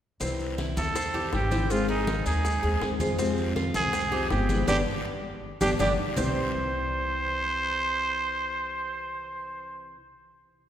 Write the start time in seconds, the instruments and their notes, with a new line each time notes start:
0.20 upright bass C2, nylon-string guitar C3 E3 G3 C4 E4, cuban tres C4, high bongo, high conga, long guiro, maracas
0.40 high conga, maracas
0.58 cuban tres E4, high bongo, high conga, short guiro, maracas
0.77 upright bass E2, muted trumpet A4, high conga, short guiro, maracas
0.95 cuban tres C4, muted nylon-string guitar stroke, high bongo, high conga, long guiro, maracas
1.14 nylon-string guitar E3 G3 C4 E4, cuban tres G4, high conga, maracas
1.32 upright bass G#1, nylon-string guitar E3 G3 C4 E4, muted trumpet G4, high bongo, low bongo, high conga, short guiro, maracas
1.51 nylon-string guitar E3 G3 C4 E4, cuban tres C5, high conga, short guiro, maracas
1.69 nylon-string guitar D#3 G#3 C4 G#4, muted trumpet F4, high bongo, long guiro, maracas
1.89 muted trumpet D#4, cuban tres G#4, high bongo, high conga, maracas
2.07 high bongo, high conga, short guiro, maracas
2.26 upright bass D#2, cuban tres D#4, muted trumpet G#4, high conga, short guiro, maracas
2.44 muted nylon-string guitar stroke, high bongo, high conga, long guiro, maracas
2.63 upright bass D#2, nylon-string guitar G#3 C4 G#4, cuban tres G#4, high bongo, maracas
2.81 upright bass F2, nylon-string guitar D#3 G#3 C4 G#4, high bongo, low bongo, high conga, short guiro, maracas
3.00 nylon-string guitar G#3 C4 G#4, cuban tres F4, high bongo, high conga, short guiro, maracas
3.18 nylon-string guitar C3 F3 G#3 C4 G4, cuban tres C4, high bongo, high conga, long guiro, maracas
3.37 high conga, maracas
3.56 cuban tres F4, high bongo, high conga, short guiro, maracas
3.74 upright bass C2, muted trumpet G#4, high conga, short guiro, maracas
3.93 cuban tres C4, muted nylon-string guitar stroke, high bongo, high conga, long guiro, maracas
4.12 nylon-string guitar F3 G#3 C4 G4, cuban tres G4, high conga, maracas
4.30 upright bass G1, nylon-string guitar F3 G#3 C4 G4, muted trumpet G4, high bongo, low bongo, high conga, short guiro, maracas
4.49 nylon-string guitar F3 G#3 C4 G4, cuban tres B4, high conga, short guiro, maracas
4.67 upright bass G1, nylon-string guitar D3 G3 B3, cuban tres B3 D4 G4, muted trumpet G4, low bongo, high conga, long guiro, maracas
5.61 upright bass G1, nylon-string guitar D3 G3 B3, cuban tres B3 D4 G4, muted trumpet G4, low bongo, high conga, long guiro, maracas
5.79 upright bass G1, nylon-string guitar D3 G3 B3, cuban tres B3 D4 G4, muted trumpet G4, low bongo, high conga, long guiro, maracas
6.16 upright bass C2, nylon-string guitar C3 E3 G3 C4 E4, cuban tres C4 G4 C5, muted trumpet C5, low bongo, low conga, long guiro, maracas